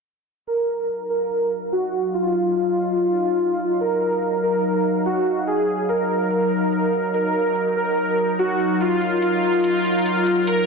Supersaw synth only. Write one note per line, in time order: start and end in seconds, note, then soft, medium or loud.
0.47 1.02 A#4 medium
1.10 1.64 A#4 medium
1.72 2.09 F#4 medium
2.14 2.51 F4 medium
2.56 3.73 F4 loud
3.81 4.35 A#4 loud
4.43 4.98 A#4 medium
5.06 5.42 F#4 medium
5.47 5.84 G#4 medium
5.89 7.06 A#4 loud
7.14 7.69 A#4 loud
7.76 8.31 A#4 medium
8.39 8.76 F#4 medium
8.81 9.17 F4 medium
9.22 10.39 F4 loud
10.47 10.66 A#4 loud